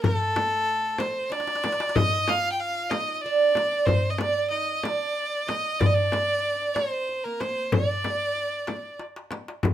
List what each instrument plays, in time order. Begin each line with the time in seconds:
0.03 oud A3, violin A4, frame drum, darbuka dum
0.36 darbuka tek, frame drum
0.98 oud C4, violin C5, darbuka tek, frame drum
1.23 oud C4
1.30 oud D4, violin D5, darbuka tek
1.40 darbuka ka
1.47 darbuka tek
1.55 darbuka ka
1.64 darbuka tek, frame drum
1.72 darbuka ka
1.80 darbuka tek
1.89 darbuka ka
1.94 oud D#4, violin D#5, frame drum, darbuka dum
2.28 oud F4, violin F5, darbuka tek, frame drum
2.52 violin G5
2.60 violin F5, darbuka ka
2.90 oud D#4, violin D#5, darbuka tek, frame drum
3.14 violin D#5
3.21 violin D5, darbuka ka
3.26 oud D4
3.55 darbuka tek, frame drum
3.72 oud D4
3.86 oud C4, violin C5, frame drum, darbuka dum
4.10 violin D#5
4.18 oud D4, violin D5, darbuka tek, frame drum
4.50 oud D#4, violin D#5, darbuka ka
4.83 oud D4, violin D5, darbuka tek, frame drum
5.47 oud D#4, violin D#5, darbuka tek, frame drum
5.80 oud D4, violin D5, frame drum, darbuka dum
5.86 violin D#5
5.94 oud D4, violin D5
6.04 oud D4
6.12 darbuka tek, frame drum
6.17 oud D4
6.26 oud D4
6.32 oud D4
6.40 oud D4
6.45 oud D4, darbuka ka
6.55 oud D4
6.61 oud D4
6.75 oud C4, violin C5, darbuka tek, frame drum
7.09 darbuka ka
7.24 oud A#3, violin A#4
7.40 violin C5, darbuka tek, frame drum
7.72 oud D4, violin D5, frame drum, darbuka dum
8.04 darbuka tek, frame drum
8.36 darbuka ka
8.67 darbuka tek, frame drum
8.99 darbuka tek
9.16 darbuka ka
9.31 darbuka tek, frame drum
9.48 darbuka ka
9.63 frame drum, darbuka dum